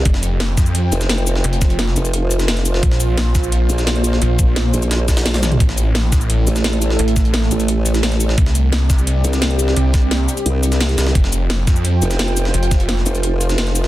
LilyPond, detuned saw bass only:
\new Staff \with { instrumentName = "Detuned saw bass" } { \clef bass \time 4/4 \key f \major \tempo 4 = 173 f,,4. f,4 r4. | f,,4. r2 r8 | bes,,4. bes,,4 r4. | bes,,4. r2 r8 |
a,,4. a,,4 r4. | a,,4. r2 r8 | c,4. c,4 r4. | c,4. r2 r8 |
f,,4. f,4 r4. | f,,4. r2 r8 | }